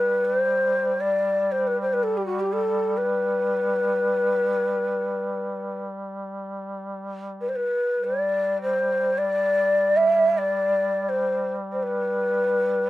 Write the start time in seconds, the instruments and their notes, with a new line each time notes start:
Already playing: duduk G3, ney B4
0.25 ney B4
0.37 ney C5
1.00 ney D5
1.52 ney C5
1.67 ney B4
1.81 ney C5
1.93 ney B4
2.03 ney A4
2.17 ney G4
2.26 ney F#4
2.40 ney G4
2.53 ney A4
2.97 ney B4
7.41 ney B4
7.49 ney C5
7.56 ney B4
7.98 duduk G3
8.04 ney D5
8.62 ney C5
9.18 ney D5
9.97 ney E5
10.38 ney D5
11.09 ney C5
11.72 ney C5
11.83 ney B4